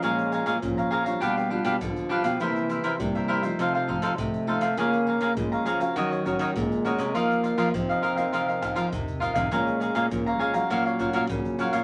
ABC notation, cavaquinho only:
X:1
M:4/4
L:1/16
Q:1/4=101
K:Bbm
V:1 name="Cavaquinho"
[Adfb]2 [Adfb] [Adfb] z [dfb] [Adfb] [dfb] [=D=G=Bf] [GBf] [DGBf] [DGBf] z2 [DGBf] [GBf] | [=EBc=e]2 [EBce] [EBce] z [Bce] [EBce] [Bce] [_E=Acf] [Acf] [EAcf] [EAcf] z2 [EAcf] [Acf] | [Adfb]2 [Adfb] [Adfb] z [dfb] [Adfb] [dfb] [GBde] [Bde] [GBde] [GBde] z2 [GBde] [Bde] | [FBef]2 [FBef] [FBef] z [Bef] [FBef] [Bef] [FBef] [Bef] [FBef] [FBef] z2 [FBef] [Bef] |
[Adfb]2 [Adfb] [Adfb] z [dfb] [Adfb] [dfb] [GBdf] [Bdf] [GBdf] [GBdf] z2 [GBdf] [Bdf] |]